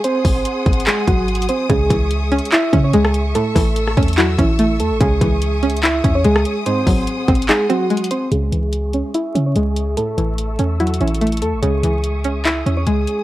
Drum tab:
HH |x-----------o-----------x-----------x---x---x---x-----------x-----------x---x---x---x-----------|x-----------x-----------x-----------x---x---x---x-----------x-----------x-----------x-----------|x-----------o-----------x-----------x--x--x--x--x-----------x-----------x-----------x-----------|x-----------x-----------x-----------x---x---x---x-----------x-----------x-----------x-----------|
CP |------------------------------------------------x-----------------------------------------------|------------------------------------------------x-----------------------------------------------|------------------------------------------------x-----------------------------------------------|------------------------------------------------x-----------------------------------------------|
SD |------------------------------------------------------------------------------------------------|------------------------------------------------------------------------------r-----------------|------------------------------r-----------------------------------------------------------------|------------------------------------------------------------------------------r-----------------|
BD |------------o-----------------------o-----------------------o-----------------------------------|o-----------o-----------------------------------------------o-----------------------------------|------------o-----------------------o-----------------------o-----------------------------------|o-----------o-----------------------------------------------o-----------------------------------|

HH |x-----------o-----------x-----------x---x---x---x-----------x-----------x---x---x---x-----------|x-----------x-----------x-----------x-----------x-----------x-----------x-----------x-----------|x-----------x-----------x-----------x-----------x---x---x---x---x---x---x--x--x--x--x-----------|x-----------x-----------x-----------x-----------x-----------x-----------x-----------x-----------|
CP |------------------------------------------------x-----------------------------------------------|------------------------------------------------------------------------------------------------|------------------------------------------------------------------------------------------------|------------------------------------------------x-----------------------------------------------|
SD |------------------------------------------------------------------------------------------------|------------------------------------------------------------------------------------------------|------------------------------------------------------------------------------------------------|------------------------------------------------------------------------------------------------|
BD |------------o-----------------------o-----------------------------------------------------------|------------------------------------------------------------------------------------------------|------------------------------------------------------------------------------------------------|------------------------------------------------------------------------------------------------|